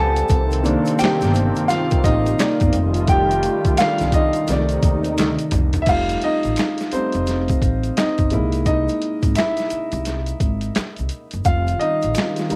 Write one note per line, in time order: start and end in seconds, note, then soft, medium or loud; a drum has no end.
0.00 0.22 C#2 medium
0.00 0.26 F3 medium
0.00 0.28 F3 medium
0.00 0.26 G3 soft
0.00 0.29 G3 medium
0.00 0.27 B3 medium
0.00 0.28 B3 medium
0.00 0.29 G4 loud
0.00 0.96 A4 medium
0.00 0.31 G#5 medium
0.00 0.96 A5 loud
0.16 closed hi-hat medium
0.16 shaker soft
0.29 0.74 C2 loud
0.29 2.71 C3 medium
0.29 2.71 D#3 medium
0.29 2.71 A#3 medium
0.29 2.71 C4 loud
0.29 kick loud
0.29 closed hi-hat medium
0.29 shaker medium
0.51 closed hi-hat medium
0.51 shaker soft
0.63 1.13 D#3 medium
0.63 1.14 A#3 medium
0.63 1.14 D4 medium
0.63 closed hi-hat medium
0.63 shaker soft
0.86 closed hi-hat medium
0.86 shaker soft
0.99 1.65 G4 medium
0.99 1.71 G5 loud
0.99 finger snap medium
0.99 muted upright bass stroke soft
0.99 closed hi-hat medium
0.99 shaker medium
1.04 finger snap medium
1.04 snare loud
1.21 1.49 G1 loud
1.21 closed hi-hat medium
1.21 shaker soft
1.25 snare soft
1.34 closed hi-hat medium
1.34 shaker medium
1.55 closed hi-hat soft
1.55 shaker soft
1.68 2.02 F4 medium
1.68 2.01 F5 loud
1.68 snare soft
1.68 closed hi-hat medium
1.68 shaker medium
1.91 kick loud
1.91 closed hi-hat soft
1.91 shaker medium
2.04 2.31 A1 medium
2.04 3.05 D#4 medium
2.04 3.11 D#5 loud
2.04 kick medium
2.04 closed hi-hat medium
2.04 shaker soft
2.26 closed hi-hat soft
2.26 shaker medium
2.39 2.70 D#3 medium
2.39 2.70 A#3 soft
2.39 2.71 D5 medium
2.39 finger snap medium
2.39 snare loud
2.39 closed hi-hat medium
2.39 shaker medium
2.41 finger snap medium
2.60 2.71 G1 loud
2.60 kick loud
2.60 closed hi-hat soft
2.60 shaker medium
2.72 3.45 F1 loud
2.72 4.45 D#3 medium
2.72 4.45 G3 medium
2.72 5.83 A3 medium
2.72 4.46 F4 medium
2.72 closed hi-hat medium
2.72 shaker medium
2.94 closed hi-hat medium
2.94 shaker soft
3.07 3.75 G4 medium
3.07 3.80 G5 loud
3.07 kick loud
3.07 closed hi-hat medium
3.07 shaker medium
3.31 closed hi-hat medium
3.31 shaker soft
3.43 closed hi-hat medium
3.43 shaker soft
3.65 kick loud
3.65 closed hi-hat medium
3.65 shaker soft
3.77 4.28 D#3 medium
3.77 4.29 G3 medium
3.77 4.29 A3 medium
3.77 4.29 D4 medium
3.77 4.12 F4 medium
3.77 4.14 F5 loud
3.77 finger snap medium
3.77 muted upright bass stroke medium
3.77 snare loud
3.77 closed hi-hat medium
3.77 shaker medium
3.81 finger snap medium
3.98 4.28 C2 medium
3.98 snare soft
3.98 closed hi-hat medium
3.98 shaker soft
4.12 5.50 D#4 medium
4.12 5.49 D#5 medium
4.12 kick medium
4.12 closed hi-hat medium
4.12 shaker medium
4.33 closed hi-hat medium
4.33 shaker soft
4.47 4.76 C2 medium
4.47 5.85 C3 loud
4.47 5.85 D#3 medium
4.47 5.84 D#3 medium
4.47 5.84 A3 medium
4.47 5.86 D#4 medium
4.47 snare soft
4.47 closed hi-hat medium
4.47 shaker medium
4.52 5.85 D5 medium
4.69 closed hi-hat soft
4.69 shaker soft
4.83 5.19 D#2 medium
4.83 kick loud
4.83 closed hi-hat medium
4.83 shaker soft
5.04 closed hi-hat soft
5.04 shaker soft
5.18 5.35 D2 loud
5.18 finger snap medium
5.18 snare medium
5.18 closed hi-hat medium
5.18 shaker medium
5.39 closed hi-hat soft
5.39 shaker soft
5.51 5.70 C2 medium
5.51 closed hi-hat medium
5.51 mid tom loud
5.51 shaker soft
5.73 5.85 D#2 medium
5.73 closed hi-hat medium
5.73 floor tom loud
5.73 shaker soft
5.82 5.87 E5 medium
5.86 6.14 F1 medium
5.86 6.88 G3 soft
5.86 6.88 A3 soft
5.86 6.23 D#4 medium
5.86 6.21 F4 medium
5.86 6.24 F5 medium
5.86 kick loud
5.86 closed hi-hat medium
5.86 crash medium
5.86 shaker medium
6.09 closed hi-hat soft
6.09 shaker soft
6.22 6.89 D#4 medium
6.22 6.95 D#5 loud
6.22 closed hi-hat medium
6.43 6.55 A1 medium
6.43 closed hi-hat soft
6.43 shaker soft
6.56 finger snap medium
6.56 snare medium
6.56 closed hi-hat medium
6.56 shaker medium
6.60 finger snap medium
6.78 snare soft
6.78 closed hi-hat medium
6.78 shaker soft
6.92 7.24 G3 soft
6.92 7.24 A3 soft
6.92 7.94 C4 medium
6.92 7.25 D#4 soft
6.92 8.00 C5 medium
6.92 muted upright bass stroke soft
6.92 closed hi-hat medium
6.92 shaker soft
7.12 7.52 F1 medium
7.12 closed hi-hat soft
7.12 shaker soft
7.27 snare soft
7.27 closed hi-hat medium
7.27 shaker medium
7.48 kick medium
7.48 closed hi-hat soft
7.48 shaker soft
7.62 7.89 A1 medium
7.62 kick medium
7.62 closed hi-hat medium
7.62 shaker soft
7.83 closed hi-hat soft
7.83 shaker soft
7.97 8.63 D#4 medium
7.97 8.65 D#5 medium
7.97 finger snap medium
7.97 muted upright bass stroke soft
7.97 snare loud
7.97 closed hi-hat medium
7.97 shaker medium
8.18 8.34 G1 medium
8.18 kick medium
8.18 closed hi-hat soft
8.18 shaker soft
8.30 8.87 C2 medium
8.30 9.32 G#3 soft
8.30 9.32 A#3 soft
8.30 9.33 E4 medium
8.30 closed hi-hat medium
8.30 shaker soft
8.52 closed hi-hat soft
8.52 shaker soft
8.66 9.33 D#4 medium
8.66 9.32 D#5 medium
8.66 kick medium
8.66 closed hi-hat medium
8.66 shaker medium
8.88 closed hi-hat soft
8.88 shaker soft
9.02 closed hi-hat medium
9.23 9.33 G#1 medium
9.23 kick medium
9.23 closed hi-hat soft
9.23 shaker soft
9.36 11.07 E4 medium
9.36 11.07 E5 medium
9.36 finger snap medium
9.36 snare loud
9.36 closed hi-hat medium
9.36 shaker medium
9.40 finger snap medium
9.57 snare soft
9.57 closed hi-hat soft
9.57 shaker soft
9.70 muted upright bass stroke soft
9.70 closed hi-hat medium
9.70 shaker medium
9.92 10.30 C2 loud
9.92 closed hi-hat soft
9.92 shaker soft
10.05 snare soft
10.05 closed hi-hat medium
10.05 shaker medium
10.26 closed hi-hat soft
10.26 shaker soft
10.40 10.68 G#1 medium
10.40 kick medium
10.40 closed hi-hat medium
10.40 shaker soft
10.61 closed hi-hat soft
10.61 shaker soft
10.75 finger snap medium
10.75 muted upright bass stroke soft
10.75 snare medium
10.75 closed hi-hat medium
10.75 shaker medium
10.96 11.09 C2 medium
10.96 closed hi-hat soft
10.96 shaker soft
11.09 closed hi-hat medium
11.09 shaker soft
11.31 11.43 F#1 medium
11.31 closed hi-hat soft
11.31 shaker soft
11.45 11.72 F1 loud
11.45 12.56 D#3 medium
11.45 12.56 G3 medium
11.45 12.56 C4 medium
11.45 12.56 F4 medium
11.45 11.79 F4 medium
11.45 11.81 F5 medium
11.45 kick loud
11.45 closed hi-hat medium
11.45 shaker medium
11.67 closed hi-hat soft
11.67 shaker soft
11.79 12.50 D#4 medium
11.79 12.56 D#5 medium
11.79 closed hi-hat medium
12.02 12.13 A1 medium
12.02 closed hi-hat soft
12.02 shaker soft
12.15 finger snap medium
12.15 snare medium
12.15 closed hi-hat medium
12.15 shaker medium
12.19 finger snap medium
12.36 snare soft
12.36 closed hi-hat soft
12.36 shaker soft
12.50 12.56 G3 medium
12.50 12.56 A3 soft
12.50 12.56 D#4 medium
12.50 muted upright bass stroke soft
12.50 closed hi-hat medium
12.50 shaker medium